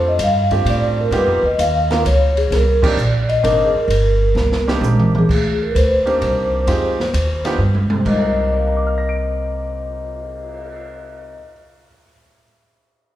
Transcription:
Already playing: upright bass F2, grand piano A3 C4 D4 F4 A4
0.08 vibraphone D#5
0.19 upright bass G2, hi-hat pedal, ride
0.23 vibraphone F5
0.51 grand piano A3 C4 D4 F4 G4, kick, ride
0.65 upright bass A2, ride
0.70 vibraphone D5
1.01 vibraphone A#4
1.11 upright bass G2, grand piano A#3 B3 D#4 F4 G4, vibraphone B4, ride
1.27 upright bass F2
1.43 upright bass D#2, vibraphone D#5
1.58 upright bass D#2, vibraphone F5, hi-hat pedal, ride
1.91 grand piano A#3 B3 D#4 F4 A#4, snare, ride
2.05 upright bass C#2, vibraphone C#5, hi-hat pedal, ride
2.37 vibraphone G#4, ride
2.51 upright bass C2, vibraphone A#4, snare, ride
2.82 grand piano A#3 C4 D4 D#4 G4, vibraphone D5, kick, crash
2.97 upright bass A#1, hi-hat pedal
3.29 vibraphone D#5, ride
3.43 upright bass G#1, grand piano A#3 C4 D4 D#4 A#4, ride
3.64 vibraphone G#4
3.75 vibraphone A#4, muted upright bass stroke
3.88 upright bass G1, ride
4.35 upright bass C2, snare
4.52 snare
4.67 grand piano A#3 C4 D4 D#4 G4, snare
4.81 upright bass A#1, hi-hat pedal, high tom
4.99 mid tom
5.15 vibraphone G#4, mid tom
5.29 upright bass D2, kick, crash
5.62 vibraphone A#4
5.71 upright bass D2, vibraphone B4
5.76 vibraphone C5, hi-hat pedal, ride
6.06 grand piano A#3 C4 D4 D#4 G4, ride
6.21 upright bass C2, ride
6.67 upright bass F2, grand piano G#3 C4 D#4 F4 G4, ride
7.00 snare
7.13 upright bass D#2, hi-hat pedal, ride
7.45 grand piano B3 D4 D#4 F4 G4, snare, ride
7.58 upright bass G2
7.75 high tom
7.90 grand piano C3, high tom
8.00 grand piano C4
8.05 upright bass C2, grand piano A#3, vibraphone D#5, kick, crash
8.12 grand piano D#4
8.19 grand piano A#4
8.37 cymbal swell
8.52 grand piano D5
8.59 grand piano F5
8.67 grand piano A#5
8.77 grand piano D6
8.87 grand piano F6
8.98 grand piano A#6
9.09 grand piano D7

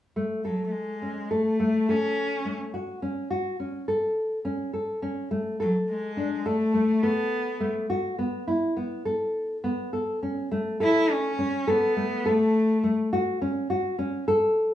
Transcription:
0.16 nylon-string guitar A3
0.45 cello F#3, nylon-string guitar A4
0.66 cello A3
0.72 cello G#3
1.02 nylon-string guitar C#4
1.31 cello A3, nylon-string guitar A4
1.60 nylon-string guitar A3
1.89 cello C#4, nylon-string guitar A4
2.45 nylon-string guitar A3
2.74 nylon-string guitar F#4
3.02 nylon-string guitar C#4
3.31 nylon-string guitar F#4
3.60 nylon-string guitar C#4
3.88 nylon-string guitar A4
4.45 nylon-string guitar C#4
4.73 nylon-string guitar A4
5.02 nylon-string guitar C#4
5.31 nylon-string guitar A3
5.60 cello F#3, nylon-string guitar A4
5.90 cello G#3
6.17 nylon-string guitar D4
6.46 cello A3, nylon-string guitar A4
6.74 nylon-string guitar A3
7.03 cello B3, nylon-string guitar A4
7.60 nylon-string guitar A3
7.90 nylon-string guitar F#4
8.19 nylon-string guitar B3
8.48 nylon-string guitar E4
8.77 nylon-string guitar B3
9.05 nylon-string guitar A4
9.64 nylon-string guitar B3
9.93 nylon-string guitar A4
10.23 nylon-string guitar C#4
10.51 nylon-string guitar A3
10.80 cello E4, nylon-string guitar A4
11.11 cello C#4
11.39 nylon-string guitar C#4
11.67 cello B3, nylon-string guitar A4
11.96 nylon-string guitar A3
12.26 cello A3, nylon-string guitar A4
12.84 nylon-string guitar A3
13.13 nylon-string guitar F#4
13.42 nylon-string guitar C#4
13.70 nylon-string guitar F#4
13.99 nylon-string guitar C#4
14.28 nylon-string guitar A4

